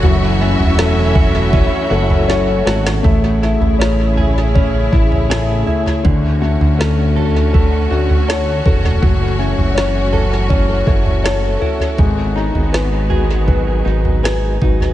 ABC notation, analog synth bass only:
X:1
M:4/4
L:1/16
Q:1/4=80
K:F#m
V:1 name="Analog synth bass" clef=bass
F,,,3 E,,,6 z F,,,4 G,,,2 | A,,,3 A,,,6- A,,, A,,,4 z2 | D,,3 D,,6- D,, D,,4 E,,,2 | F,,,3 F,,,6- F,,, F,,,4 z2 |
G,,,3 G,,,6- G,,, G,,,4 G,,,2 |]